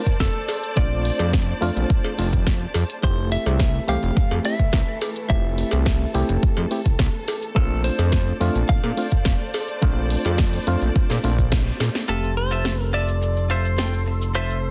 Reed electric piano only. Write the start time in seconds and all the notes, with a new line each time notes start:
0.76 A3 C4 D4 F4
1.61 A3 C4 D4 F4
2.18 A3 C4 D4 F4
3.02 A3 C4 E4 G4
3.88 E3 A3 C4 G4
4.44 A3 C4 E4 G4
5.29 A3 C4 E4 G4
6.14 A3 C4 E4 G4
6.71 A3 C4 E4 G4
7.55 A3 C4 D4 F4
8.40 A3 C4 D4 F4
8.97 A3 C4 D4 F4
9.81 A3 C4 D4 F4
10.67 A3 C4 D4 F4
11.24 A3 C4 D4 F4
12.08 A3 C4 G4